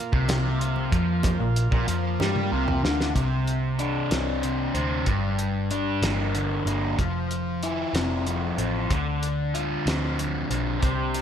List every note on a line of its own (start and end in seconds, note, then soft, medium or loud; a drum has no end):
0.00 3.11 A#3 medium
0.00 3.11 F4 medium
0.13 0.88 C2 loud
0.13 0.91 C3 medium
0.13 kick loud
0.28 snare loud
0.28 closed hi-hat loud
0.28 high conga medium
0.28 low conga medium
0.61 closed hi-hat medium
0.76 low conga medium
0.92 1.37 F2 medium
0.92 1.39 F3 medium
0.92 kick loud
0.92 closed hi-hat medium
0.92 low conga soft
1.23 kick loud
1.23 closed hi-hat medium
1.23 high conga medium
1.23 low conga medium
1.40 1.70 A#1 medium
1.40 1.66 A#2 medium
1.56 closed hi-hat medium
1.71 1.87 A#1 medium
1.71 1.86 A#2 medium
1.71 kick loud
1.71 low conga medium
1.88 2.17 F2 medium
1.88 2.19 F3 loud
1.88 closed hi-hat medium
2.04 low conga soft
2.20 2.49 G2 medium
2.20 2.51 G3 loud
2.20 snare medium
2.20 high conga medium
2.20 low conga medium
2.36 high tom medium
2.51 2.81 C2 medium
2.51 2.82 C3 medium
2.51 low conga soft
2.68 mid tom medium
2.68 low conga medium
2.83 3.13 D2 medium
2.83 3.14 D3 medium
2.83 snare medium
2.83 low conga soft
3.01 snare medium
3.15 4.01 C2 medium
3.15 4.42 C3 medium
3.15 kick medium
3.15 closed hi-hat medium
3.47 closed hi-hat soft
3.79 5.07 D4 medium
3.79 closed hi-hat soft
4.11 4.68 C2 medium
4.11 4.73 C4 medium
4.11 snare loud
4.11 closed hi-hat medium
4.43 5.07 C3 medium
4.43 closed hi-hat medium
4.74 5.03 D2 medium
4.74 5.06 C4 medium
4.74 closed hi-hat medium
5.06 5.92 G1 medium
5.06 6.67 G2 medium
5.06 kick medium
5.06 closed hi-hat medium
5.39 closed hi-hat medium
5.71 6.98 D4 medium
5.71 closed hi-hat medium
6.02 6.59 G1 medium
6.02 6.66 A#3 medium
6.02 snare medium
6.02 closed hi-hat medium
6.34 6.98 D3 medium
6.34 closed hi-hat medium
6.66 6.95 G1 medium
6.66 6.99 A#3 medium
6.66 closed hi-hat medium
6.99 7.84 F1 medium
6.99 8.26 F3 medium
6.99 kick medium
6.99 closed hi-hat medium
7.31 closed hi-hat medium
7.63 8.91 E4 medium
7.63 closed hi-hat medium
7.93 8.51 F1 medium
7.93 8.59 C4 medium
7.93 snare loud
7.93 closed hi-hat medium
8.27 8.91 F3 medium
8.27 closed hi-hat medium
8.58 8.87 A1 medium
8.58 8.94 C4 medium
8.58 closed hi-hat medium
8.91 9.76 D2 medium
8.91 10.18 D3 medium
8.91 kick loud
8.91 closed hi-hat medium
9.23 closed hi-hat medium
9.55 10.83 F4 medium
9.55 closed hi-hat medium
9.86 10.43 D2 medium
9.86 10.49 C4 medium
9.86 snare loud
9.86 closed hi-hat medium
10.19 10.81 D3 medium
10.19 closed hi-hat medium
10.50 10.79 B1 medium
10.50 10.82 C4 medium
10.50 closed hi-hat medium
10.81 11.22 C2 medium
10.81 11.22 C3 medium
10.81 11.22 G3 medium
10.81 11.22 C4 soft
10.81 11.22 D4 medium
10.81 11.22 G4 soft
10.81 11.22 C5 medium
10.81 kick loud
10.81 closed hi-hat medium
11.14 closed hi-hat medium